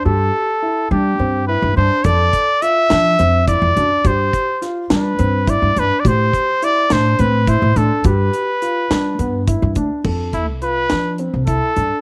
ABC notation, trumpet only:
X:1
M:7/8
L:1/16
Q:1/4=105
K:Flyd
V:1 name="Trumpet"
A6 G4 B2 c2 | d4 e6 d4 | c4 z2 B4 d2 B3/2 d/2 | c4 d2 c2 B2 c2 A2 |
B8- B2 z4 | z2 E2 B4 z2 A4 |]